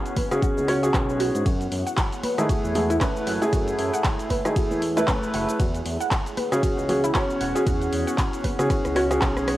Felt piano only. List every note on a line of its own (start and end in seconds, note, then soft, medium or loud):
0.00 0.28 C#4 medium
0.00 0.28 F#4 medium
0.00 0.28 G#4 loud
0.31 0.66 C#4 medium
0.31 0.66 F#4 medium
0.31 0.66 G#4 loud
0.68 0.79 C#4 medium
0.68 0.79 F#4 medium
0.68 0.80 C#5 loud
0.83 1.44 C#4 medium
0.83 1.45 F#4 medium
0.83 1.45 G#4 loud
2.38 2.72 A3 medium
2.38 2.72 E4 medium
2.38 2.73 G#4 loud
2.75 2.88 A3 medium
2.75 2.88 E4 medium
2.75 2.88 G#4 medium
3.01 3.38 A3 medium
3.01 3.38 E4 medium
3.01 3.38 B4 loud
3.42 4.42 A3 medium
3.42 4.42 E4 medium
3.42 4.42 G#4 loud
4.45 4.79 A3 medium
4.45 4.79 E4 medium
4.45 4.79 G#4 loud
4.97 5.58 A3 loud
4.97 5.58 E4 medium
4.97 5.58 B4 loud
6.52 6.86 C#4 medium
6.52 6.86 F#4 medium
6.52 6.86 G#4 loud
6.89 7.02 C#4 medium
6.89 7.02 F#4 medium
6.89 7.02 G#4 medium
7.15 7.52 C#4 medium
7.15 7.52 F#4 medium
7.15 7.52 C#5 loud
7.55 8.55 C#4 medium
7.55 8.55 F#4 medium
7.55 8.55 G#4 loud
8.59 8.93 C#4 medium
8.59 8.93 F#4 medium
8.59 8.93 G#4 loud
8.96 9.07 C#4 loud
8.96 9.07 F#4 medium
8.96 9.07 C#5 loud
9.11 9.57 C#4 medium
9.11 9.57 F#4 medium
9.11 9.57 G#4 loud